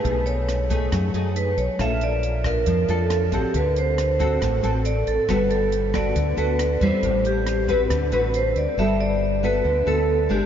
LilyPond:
<<
  \new Staff \with { instrumentName = "Vibraphone" } { \time 4/4 \key g \major \tempo 4 = 138 b'8 cis''4. r4 b'8 cis''8 | e''8 d''4 bes'4 a'4 g'8 | b'8 c''2 r8 d''8 a'8 | b'8 a'4 d''4 b'4 c''8~ |
c''8 g'4. r4 c''8 d''8 | e''8 d''4 b'4 a'4 g'8 | }
  \new Staff \with { instrumentName = "Nylon-string guitar" } { \time 4/4 \key g \major << { <a ees' aes'>4. <a dis' gis'>4 <a dis' gis'>4. | <d' f' a'>4. <d' f'>4 <d' f' a'>4 <c' fis' a'>8~ | <c' fis' a'>4. <c' fis' a'>4 <c' fis' a'>4. | <b fis' a'>4. <b fis' a'>4 <b fis' a'>4 <g c' e'>8~ |
<g c' e'>4. <c' fis' b'>4 <c' fis' b'>4. | <b fis' a'>4. <b fis' a'>4 <b fis' a'>4 <aes d'>8 | } \\ { b,2 fis2 | bes2 f2 | d2 a,2 | g2 d2 |
a,2 d2 | g2 d2 | } >> }
  \new Staff \with { instrumentName = "Fingered electric bass" } { \clef bass \time 4/4 \key g \major b,,2 fis,8 fis,4 b,,16 r16 | bes,,2 f,8 f,4 a,,16 r16 | d,2 a,,8 a,,4 a,,16 r16 | g,,2 d,8 d,4 e,16 r16 |
a,,2 d,8 a,,4 d,16 r16 | g,,2 d,8 d,4 g,,16 r16 | }
  \new DrumStaff \with { instrumentName = "Drums" } \drummode { \time 4/4 <hh bd>8 hh8 <hh ss>8 <hh bd>8 <hh bd ss>8 hh8 hh8 hh8 | <hh bd ss>8 hh8 hh8 <hh bd ss>8 <hh bd>8 hh8 <hh ss>8 <hh bd>8 | <hh bd>8 hh8 <hh ss>8 <hh bd>8 <hh bd ss>8 hh8 hh8 hh8 | <hh bd ss>8 hh8 hh8 <hh bd ss>8 <hh bd>8 hh8 <hh ss>8 <hh bd>8 |
<hh bd>8 hh8 <hh ss>8 <hh bd>8 <hh bd ss>8 hh8 hh8 hh8 | r4 r4 r4 r4 | }
>>